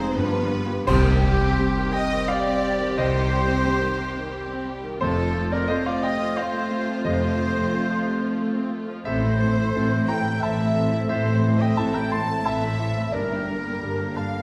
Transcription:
Already playing: double bass section F1, grand piano F2 G#3 G#4 C5 F5, french horn section G#3 C4, viola section C4 G#4, cello section C4, clarinet D#4, violin section C5
0.15 double bass section G1, grand piano G2, french horn section F3 D4, viola section G3 F4, cello section B3, clarinet D4, violin section B4
0.42 grand piano G3
0.66 grand piano F4 G4
0.87 double bass section C2, grand piano C2 C5, cello section C3, viola section C3 G3, french horn section G3 C4, violin section G4, flute section G4, oboe G4, concert bass drum, crash
1.05 viola section D#3
1.24 viola section G3
1.41 viola section C4
1.59 grand piano G3 C4 G4, viola section G3
1.77 viola section D#3
1.93 viola section C3, oboe D#5, flute section D#5, violin section D#5, grand piano G5
2.12 viola section D#3
2.28 viola section G3, oboe D5, flute section D5, violin section D5, grand piano F5
2.47 viola section C4
2.65 viola section G3
2.82 viola section D#3
2.97 double bass section C2, grand piano C2 D#5, cello section C3, viola section C3, oboe C5, violin section C5, flute section C5
3.15 viola section D#3
3.32 viola section G3
3.47 viola section C4
3.64 viola section G3, grand piano G3 C4 G4
3.82 viola section D#3
3.98 viola section C3
4.17 viola section D#3
4.33 viola section G3
4.51 viola section C4
4.67 viola section G3
4.85 viola section D#3
5.01 double bass section F1, grand piano F2 C5, cello section F2, viola section C3 A3, french horn section A3 C4, violin section F4 A4, flute section A4, oboe A4
5.18 viola section F3
5.34 viola section A3
5.51 viola section C4, oboe A#4, flute section A#4, violin section A#4, grand piano D5
5.68 viola section A3, grand piano A3 C4 F4 D#5, flute section C5, oboe C5, violin section C5
5.86 viola section F3, violin section D5, oboe D5, flute section D5, grand piano F5
6.02 viola section C3, oboe D#5, violin section D#5, flute section D#5, grand piano G5
6.19 viola section F3
6.37 viola section A3, oboe C5, flute section C5, violin section C5, grand piano F5
6.54 viola section C4
6.71 viola section A3
6.87 viola section F3
7.03 double bass section F1, cello section F2, grand piano F2 D#5, viola section C3, oboe C5, flute section C5, violin section C5
7.22 viola section F3
7.38 viola section A3
7.55 viola section C4
7.73 grand piano A3 C4 F4, viola section A3
7.90 viola section F3
8.06 viola section C3
8.23 viola section F3
8.39 viola section A3
8.56 viola section C4
8.73 viola section A3
8.89 viola section F3
9.05 double bass section A1, grand piano A2 E5, cello section A2, viola section E3 C4, french horn section A3 C4, violin section A4 C5, oboe C5, flute section C5
9.23 viola section A3, violin section E4
9.39 viola section E3 C4, violin section A4
9.56 viola section A3, violin section E4
9.72 double bass section A1, cello section A2, viola section E3, grand piano A3 C4 E4, violin section A4
9.77 viola section C4
9.91 viola section A3, violin section E4
10.07 viola section E3 C4, violin section A4 G5, oboe G5, flute section G5, grand piano A#5
10.24 viola section A3, violin section E4
10.41 double bass section A1, cello section A2, viola section E3 C4, violin section A4 E5, oboe E5, flute section E5, grand piano A5
10.57 viola section A3, violin section E4
10.75 viola section E3 C4, violin section A4
10.92 viola section A3, violin section E4
11.08 double bass section A1, grand piano A2 E5, cello section A2, viola section E3 C4, violin section A4 C5, flute section C5, oboe C5
11.27 viola section A3, violin section E4
11.43 viola section E3 C4, violin section A4
11.59 viola section A3, violin section E4 D#5, flute section D#5, oboe D#5, grand piano G5
11.76 double bass section A1, cello section A2, viola section E3 C4, grand piano A3 C4 E4 A5, violin section A4 E5, oboe E5, flute section E5
11.93 viola section A3, violin section E4 G5, flute section G5, oboe G5, grand piano A#5
12.11 viola section E3 C4, violin section A4 A5, oboe A5, flute section A5, grand piano C6
12.27 viola section A3, violin section E4
12.45 double bass section A1, cello section A2, viola section E3 C4, violin section A4 E5, flute section E5, oboe E5, grand piano A5
12.63 viola section A3, violin section E4
12.79 viola section E3 C4, violin section A4
12.97 viola section A3, violin section E4
13.12 double bass section G1, timpani G2, cello section G2, grand piano G2 D5, french horn section D3 A#3, viola section G3 D4, violin section A#4, oboe A#4, flute section A#4
13.31 viola section A#3, violin section G4
13.48 viola section G3 D4, violin section A#4
13.66 viola section A#3, violin section G4
13.82 double bass section G1, cello section G2, viola section G3 D4, grand piano A#3 D4 G4, violin section A#4
14.00 viola section A#3, violin section G4
14.16 viola section G3 D4, violin section A#4 F5, oboe F5, flute section F5, grand piano A5
14.36 viola section A#3, violin section G4

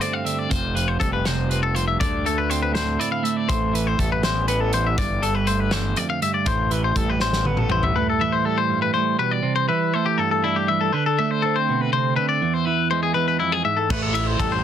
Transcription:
Already playing: clean electric guitar G2 D3 A3
0.01 clean electric guitar C4 D5, closed hi-hat
0.13 clean electric guitar F5
0.24 clean electric guitar D3 E5, closed hi-hat
0.39 clean electric guitar D5
0.50 fingered electric bass F1, clean electric guitar F2 C5, kick, closed hi-hat
0.75 clean electric guitar F3 B4, closed hi-hat
0.88 clean electric guitar C5
1.00 fingered electric bass F1, clean electric guitar G3 A4, kick, closed hi-hat
1.13 clean electric guitar B4
1.25 clean electric guitar C3 C5, snare, closed hi-hat
1.50 clean electric guitar C4 B4, closed hi-hat
1.63 clean electric guitar A4
1.75 clean electric guitar F3 C5, closed hi-hat
1.88 clean electric guitar E5
2.00 fingered electric bass D2, clean electric guitar D3 D5, kick, closed hi-hat
2.25 clean electric guitar A3 A4, closed hi-hat
2.38 clean electric guitar B4
2.50 clean electric guitar C4 C5, closed hi-hat
2.63 clean electric guitar B4
2.72 clean electric guitar A2 C5, snare, closed hi-hat
2.99 clean electric guitar E4 D5, closed hi-hat
3.12 clean electric guitar F5
3.23 clean electric guitar A3 E5, closed hi-hat
3.36 clean electric guitar D5
3.49 fingered electric bass A1, clean electric guitar A2 C5, kick, closed hi-hat
3.73 clean electric guitar E3 B4, closed hi-hat
3.87 clean electric guitar C5
3.99 fingered electric bass A1, clean electric guitar G3 A4, kick, closed hi-hat
4.12 clean electric guitar B4
4.22 clean electric guitar E2 C5, snare, closed hi-hat
4.48 clean electric guitar B3 B4, closed hi-hat
4.60 clean electric guitar A4
4.73 clean electric guitar E3 C5, closed hi-hat
4.87 clean electric guitar E5
4.98 fingered electric bass G1, clean electric guitar G2 D5, kick, closed hi-hat
5.22 clean electric guitar D3 A4, closed hi-hat
5.35 clean electric guitar B4
5.47 clean electric guitar A3 C5, closed hi-hat
5.60 clean electric guitar B4
5.71 clean electric guitar E2 C5, snare, closed hi-hat
5.96 clean electric guitar F2 D5, closed hi-hat
6.10 clean electric guitar F5
6.22 clean electric guitar G2 E5, closed hi-hat
6.34 clean electric guitar D5
6.46 fingered electric bass A1, clean electric guitar A2 C5, kick, closed hi-hat
6.71 clean electric guitar E3 B4, closed hi-hat
6.84 clean electric guitar C5
6.96 fingered electric bass A1, clean electric guitar G3 A4, kick, closed hi-hat
7.10 clean electric guitar B4
7.20 clean electric guitar E2 C5, snare
7.33 snare
7.45 clean electric guitar B3 B4, high tom
7.57 clean electric guitar A4, mid tom
7.70 clean electric guitar E3 C5, mid tom
7.83 clean electric guitar E5, floor tom
7.95 clean electric guitar A2 B4
8.09 clean electric guitar A4
8.20 clean electric guitar E3 E5
8.32 clean electric guitar C5
8.45 clean electric guitar G3 A4
8.58 clean electric guitar C5
8.70 clean electric guitar G2
8.82 clean electric guitar B4
8.94 clean electric guitar A2 C5
9.19 clean electric guitar B2 B4
9.31 clean electric guitar D5
9.43 clean electric guitar C3
9.56 clean electric guitar C5
9.69 clean electric guitar E3 B4
9.94 clean electric guitar A3 C5
10.06 clean electric guitar G4
10.18 clean electric guitar G2 A4
10.31 clean electric guitar A4
10.44 clean electric guitar D4 E4
10.56 clean electric guitar G4
10.68 clean electric guitar E3 E5
10.81 clean electric guitar A4
10.92 clean electric guitar D3 B4
11.06 clean electric guitar A4
11.19 clean electric guitar A3 E5
11.31 clean electric guitar C5
11.42 clean electric guitar C4 A4
11.56 clean electric guitar C5
11.69 clean electric guitar B2
11.81 clean electric guitar B4
11.93 clean electric guitar C3 C5
12.16 clean electric guitar D3 B4
12.29 clean electric guitar D5
12.42 clean electric guitar E2
12.54 clean electric guitar C5
12.65 clean electric guitar E3 B4
12.91 clean electric guitar G#3 C5
13.03 clean electric guitar G#4
13.14 clean electric guitar E2 B4
13.28 clean electric guitar B4
13.40 clean electric guitar F2 E4
13.52 clean electric guitar G#4
13.65 clean electric guitar G#2 E5
13.77 clean electric guitar A4
13.90 fingered electric bass A1, clean electric guitar A2 B4, kick, crash
14.02 clean electric guitar A4
14.13 clean electric guitar E3 E5, ride
14.27 clean electric guitar C5
14.39 fingered electric bass A1, clean electric guitar G3 A4, kick, ride
14.52 clean electric guitar C5

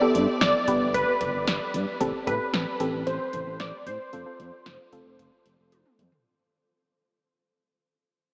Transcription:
Already playing: analog polysynth D5
0.01 synth pluck B3 G4 A4
0.15 analog synth bass G2, closed hi-hat
0.41 analog synth bass G1, analog polysynth D5, snare, closed hi-hat
0.68 analog synth bass G1, synth pluck B3 G4 B4, kick, closed hi-hat
0.81 analog synth bass G1
0.94 analog synth bass G1, analog polysynth B4, kick, closed hi-hat
1.21 analog synth bass G1, kick, closed hi-hat
1.34 analog synth bass G1
1.47 analog synth bass G1, snare, closed hi-hat
1.74 analog synth bass G2, closed hi-hat
2.01 analog synth bass A1, synth pluck C4 G4 A4, kick, closed hi-hat
2.27 analog synth bass A2, synth pluck C4 G4 A4, analog polysynth B4, kick, closed hi-hat
2.54 analog synth bass A1, snare, closed hi-hat
2.80 analog synth bass A1, synth pluck C4 G4 A4, closed hi-hat
2.93 analog synth bass A1
3.07 analog synth bass A1, analog polysynth C5, closed hi-hat
3.33 analog synth bass A1, kick, closed hi-hat
3.47 analog synth bass A1
3.60 analog synth bass A1, analog polysynth D5, snare, closed hi-hat
3.86 analog synth bass A2, analog polysynth C5, closed hi-hat
4.13 analog synth bass F1, synth pluck C4 F4 A4, closed hi-hat
4.26 synth pluck C4 F4 A4
4.40 analog synth bass F2, closed hi-hat
4.66 analog synth bass F1, snare, closed hi-hat
4.93 analog synth bass F1, synth pluck C4 F4 A4, kick, closed hi-hat
5.06 analog synth bass F1
5.19 analog synth bass F1, kick, closed hi-hat
5.46 analog synth bass F1, closed hi-hat
5.59 analog synth bass F1
5.72 analog synth bass F1, closed hi-hat, high tom
5.86 mid tom
5.99 analog synth bass F2, closed hi-hat, mid tom
6.12 floor tom

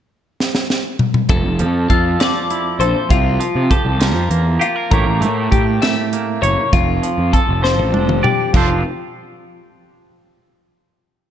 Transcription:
0.40 snare
0.55 snare
0.70 snare
0.99 mid tom
1.14 mid tom
1.29 picked electric bass F1, clean electric guitar F2 A4, kick, closed hi-hat
1.45 picked electric bass F1
1.59 picked electric bass F2, clean electric guitar F3, closed hi-hat
1.90 picked electric bass F2, clean electric guitar F4 A4, kick, closed hi-hat
2.20 clean electric guitar F3 D5, snare, closed hi-hat
2.50 clean electric guitar E4, closed hi-hat
2.80 picked electric bass A#1, clean electric guitar A4 C5, closed hi-hat
3.09 picked electric bass C2, clean electric guitar C3 F4, kick, closed hi-hat
3.40 clean electric guitar F3, closed hi-hat
3.55 picked electric bass C3
3.70 clean electric guitar G4 A4, kick, closed hi-hat
3.85 picked electric bass C2
4.00 clean electric guitar F3 A#4, snare, closed hi-hat
4.15 picked electric bass F2
4.30 picked electric bass E2, clean electric guitar A#3, closed hi-hat
4.59 clean electric guitar F4 G4, closed hi-hat
4.76 clean electric guitar A#4
4.91 picked electric bass A1, clean electric guitar A2 A3 A#3 G4 A#4 C#5, kick, closed hi-hat
5.07 picked electric bass A1
5.21 picked electric bass A2, clean electric guitar A3, closed hi-hat
5.51 picked electric bass A2, clean electric guitar G4, kick, closed hi-hat
5.82 clean electric guitar A3 E5, snare, closed hi-hat
6.13 clean electric guitar A#3, closed hi-hat
6.42 picked electric bass F#1, clean electric guitar C#5, closed hi-hat
6.73 picked electric bass F1, clean electric guitar F2 F4, kick, closed hi-hat
7.03 clean electric guitar F3, closed hi-hat
7.18 picked electric bass F2
7.33 clean electric guitar A4, kick, closed hi-hat
7.49 picked electric bass F1
7.62 clean electric guitar F3 C5, snare
7.79 picked electric bass A1
7.93 picked electric bass F1, clean electric guitar D4, high tom
8.09 mid tom
8.23 clean electric guitar G4 D5, mid tom
8.53 picked electric bass F1, clean electric guitar F2 F3 D4 F4 A4 C5, kick, crash

